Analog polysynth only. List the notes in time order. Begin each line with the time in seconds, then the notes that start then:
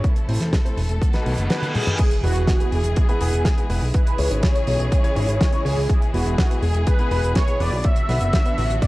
1.50 B4
1.74 G#4
2.24 F#4
2.73 G#4
2.97 G#4
3.22 G#4
3.94 B4
4.43 C#5
5.41 C#5
5.65 G#4
6.13 F#4
6.62 G#4
6.87 B4
7.11 B4
7.36 C#5
7.60 D5
7.84 E5
8.82 D5